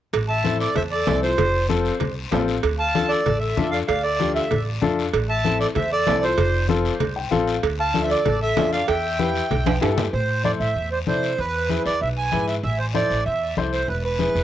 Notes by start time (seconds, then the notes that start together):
0.13 A1, cowbell, high conga, long guiro
0.28 E5 A5
0.44 C4 E4 A4, high conga, short guiro
0.60 A4 D5, short guiro
0.76 E2 C5 E5, cowbell, high conga, low conga, long guiro
0.91 A4 D5
1.07 C2 C4 E4 A4, high conga, low timbale, short guiro
1.23 F4 C5, short guiro
1.38 F1, cowbell, high conga, low conga, long guiro
1.69 C4 F4 A4, high conga, short guiro
1.85 short guiro
2.00 C2, cowbell, high conga, low conga, long guiro
2.32 A1 C4 F4 A4, high conga, low timbale, short guiro
2.48 short guiro
2.63 D2, cowbell, high conga, long guiro
2.79 F5 A5
2.95 D4 F4 A4, high conga, short guiro
3.09 A4 D5, short guiro
3.26 A1, cowbell, high conga, low conga, long guiro
3.40 A4 E5
3.57 F2 D4 F4 A4, high conga, low conga, short guiro
3.71 D5 F5, short guiro
3.87 D2 D5 F5, cowbell, high conga, long guiro
4.03 A4 D5
4.20 D4 F4 G4, high conga, short guiro
4.35 A4 E5, short guiro
4.51 A1, cowbell, high conga, low conga, long guiro
4.82 F2 D4 F4 A4, high conga, low conga, short guiro
4.99 short guiro
5.13 A1, cowbell, high conga, long guiro
5.29 E5 A5
5.44 C4 E4 A4, high conga, short guiro
5.60 A4 D5, short guiro
5.75 E2 C5 E5, cowbell, high conga, low conga, long guiro
5.92 A4 D5
6.07 C2 C4 E4 A4, high conga, low timbale, short guiro
6.23 F4 C5, short guiro
6.38 F1, cowbell, high conga, low conga, long guiro
6.69 C4 F4 A4, high conga, short guiro
6.85 short guiro
7.00 C2, cowbell, high conga, low conga, long guiro
7.16 G5
7.31 A1 C4 F4 A4 F5, high conga, short guiro
7.47 short guiro
7.63 D2, cowbell, high conga, long guiro
7.80 F5 A5
7.94 D4 F4 A4, high conga, short guiro
8.03 C5 E5
8.10 A4 D5, short guiro
8.25 A1, cowbell, high conga, low conga, long guiro
8.42 A4 E5
8.56 F2 D4 F4 A4, high conga, low conga, low timbale, short guiro
8.72 D5 F5, short guiro
8.88 E2 E5 G5, cowbell, high conga, long guiro
9.19 E4 G4 B4, high conga, short guiro
9.35 short guiro
9.51 B1, cowbell, high conga, low conga, long guiro
9.66 high conga, high timbale
9.81 G2 E4 G4 A4 B4, high conga, high timbale, short guiro
9.98 low conga, low timbale, short guiro
10.13 A2 C5, high conga, long guiro
10.44 E4 A4 C5 D5, high conga, short guiro
10.60 A2 E5, short guiro
10.75 E2, high conga, long guiro
10.92 C5
11.07 C3 E4 A4 C5 D5, high conga, short guiro
11.23 short guiro
11.38 E2 B4, high conga, long guiro
11.69 E4 G#4 B4, high conga, short guiro
11.86 E2 D5, short guiro
12.01 B1 E5, high conga, long guiro
12.17 G#5
12.32 G#2 E4 G#4 B4, high conga, short guiro
12.48 E5, short guiro
12.63 A1 E5, high conga, long guiro
12.79 C5
12.94 E4 A4 C5 D5, high conga, short guiro
13.10 A1, short guiro
13.26 E2 E5, high conga, long guiro
13.57 C2 E4 A4 C5, high conga, short guiro
13.73 C5, short guiro
13.88 E1 B4, high conga, long guiro
14.05 B4
14.19 E4 G#4 B4, high conga, short guiro
14.35 E1, short guiro